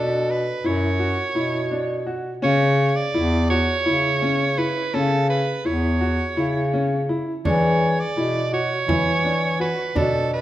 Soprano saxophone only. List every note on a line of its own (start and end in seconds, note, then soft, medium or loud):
0.00 0.32 A4 medium
0.30 0.67 B4 medium
0.66 2.08 C#5 medium
2.44 2.97 C#5 medium
2.96 3.50 D5 medium
3.50 4.59 C#5 medium
4.58 4.96 B4 medium
4.94 5.29 A4 medium
5.30 5.67 B4 medium
5.65 7.09 C#5 medium
7.45 8.01 C#5 medium
8.00 8.53 D5 medium
8.53 9.56 C#5 medium
9.61 9.99 B4 medium
9.97 10.32 A4 medium
10.33 10.41 B4 medium